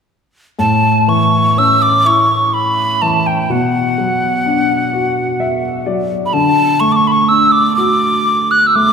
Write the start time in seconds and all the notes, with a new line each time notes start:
0.59 A2 A5
1.08 E3 C#6
1.57 C#4 E6
1.82 D6
2.05 E4 C#6
2.54 B5
3.02 E3 A5
3.27 G5
3.42 G5
3.50 B2 F#5
3.98 F#3
4.46 D4
4.93 F#4
5.40 E5
5.86 F#3 D5
6.26 B5
6.33 D3 A5
6.80 A3 C#6
6.92 D6
6.96 C#6
7.07 B5
7.12 C#6
7.29 D4 E6
7.52 D6
7.76 F#4 D6
8.51 F#6
8.67 E6
8.75 A3 D6